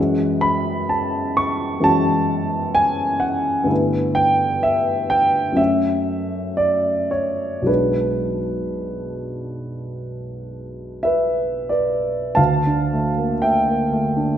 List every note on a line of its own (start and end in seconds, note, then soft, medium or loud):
0.00 1.77 F#2 soft
0.00 1.78 E3 soft
0.00 1.78 G#3 soft
0.00 1.79 C#4 soft
0.00 1.79 F#4 soft
0.41 0.89 B5 medium
0.89 1.37 A5 medium
1.37 1.84 C#6 medium
1.80 3.64 F#2 soft
1.80 3.65 E3 soft
1.80 3.65 G#3 soft
1.80 3.66 C#4 soft
1.84 3.66 F#4 soft
1.84 2.76 A5 medium
2.75 3.22 G#5 medium
3.20 3.69 F#5 medium
3.64 5.51 G2 soft
3.64 5.52 D3 soft
3.64 5.53 A3 soft
3.68 5.53 B3 soft
3.68 5.54 E4 soft
4.15 4.63 G5 medium
4.63 5.10 E5 medium
5.10 5.58 G5 medium
5.52 7.60 F#2 soft
5.52 7.61 F#3 soft
5.52 7.62 A3 soft
5.56 7.62 C#4 soft
5.56 7.63 F#4 soft
5.56 6.58 E5 medium
6.57 7.11 D5 medium
7.11 7.67 C#5 medium
7.62 12.31 B1 soft
7.62 12.31 F#3 soft
7.62 12.32 G#3 soft
7.66 12.33 D4 soft
7.66 12.33 F#4 soft
7.66 11.03 B4 soft
11.03 11.67 B4 soft
11.03 11.70 E5 medium
11.69 12.33 B4 soft
11.69 12.36 D5 soft
12.35 14.38 D2 soft
12.35 13.39 F5 medium
12.35 13.42 A5 medium
12.67 13.09 D4 soft
12.93 13.34 A3 soft
13.18 13.43 A#3 soft
13.42 13.83 A3 soft
13.42 14.38 E5 soft
13.42 14.38 G5 medium
13.68 13.93 A#3 soft
13.93 14.33 A3 soft
14.17 14.38 D4 soft